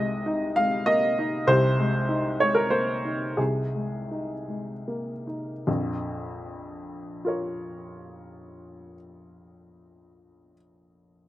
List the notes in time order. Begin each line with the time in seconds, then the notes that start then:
Already playing: C2 C3 G#3 D#4 D#5
0.26 D#4
0.56 G#3 F5
0.86 A#3 D#5
1.19 D#4
1.47 C2 C3 C5
1.79 G#3
2.09 D#4
2.40 G#3 C#5
2.55 A#4
2.70 A#3 C5
3.05 D#4
3.37 C2 C3 G#4
3.74 G#3
4.11 D#4
4.48 G#3
4.88 A#3
5.27 D#4
5.67 A#1 F2
7.25 F4 A#4 C#5